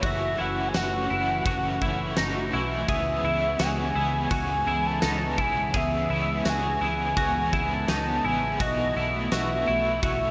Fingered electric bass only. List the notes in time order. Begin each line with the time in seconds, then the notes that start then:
0.03 F#1
0.39 F#1
0.75 F#1
1.11 F#1
1.46 F#1
1.81 F#1
2.17 F#1
2.53 B1
2.88 C#2
3.24 C#2
3.59 C#2
3.95 C#2
4.31 C#2
4.67 C#2
5.03 C#2
5.38 B1
5.74 C#2
6.10 C#2
6.45 C#2
6.81 C#2
7.17 C#2
7.53 C#2
7.88 C#2
8.24 A1
8.60 B1
8.96 B1
9.32 B1
9.68 B1
10.03 B1